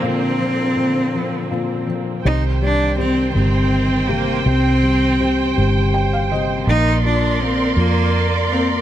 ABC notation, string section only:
X:1
M:6/8
L:1/8
Q:3/8=54
K:Cm
V:1 name="String section"
[D,B,C]6 | [E,cg]6- | [E,cg]6 | [Bdc']6 |]